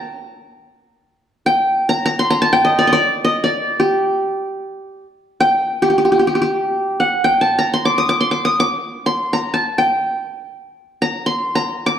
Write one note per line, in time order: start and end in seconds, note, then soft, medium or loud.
0.00 0.24 G5 medium
0.00 0.87 A#5 medium
1.46 2.29 G5 medium
1.89 2.05 A#5 medium
2.06 2.30 A#5 medium
2.19 2.89 C6 medium
2.30 2.48 A#5 medium
2.42 3.19 A5 medium
2.53 3.35 G5 medium
2.65 2.85 D#5 medium
2.79 2.92 D5 medium
2.87 2.99 D#5 medium
2.93 3.31 D5 medium
3.25 3.50 D#5 medium
3.44 4.42 D5 medium
3.80 5.05 G4 medium
5.40 6.23 G5 medium
5.82 5.90 G4 medium
5.90 5.98 G4 soft
5.98 6.04 G4 medium
6.05 6.11 G4 soft
6.12 6.19 G4 medium
6.19 6.27 G4 soft
6.27 6.35 G4 medium
6.35 6.41 G4 medium
6.42 7.06 G4 medium
7.00 7.30 F#5 medium
7.24 8.07 G5 medium
7.41 7.65 A5 medium
7.59 8.33 A#5 medium
7.74 8.20 C6 medium
7.85 8.04 D6 medium
7.98 8.15 D#6 medium
8.09 8.31 D6 medium
8.21 8.90 C6 medium
8.31 8.51 D6 medium
8.45 8.66 D#6 medium
8.60 9.25 D6 medium
9.06 9.76 C6 medium
9.33 9.60 A#5 medium
9.54 10.31 A5 medium
9.78 10.64 G5 medium
11.02 11.55 A#5 medium
11.26 11.96 C6 medium
11.55 11.99 A#5 medium
11.86 11.99 D6 medium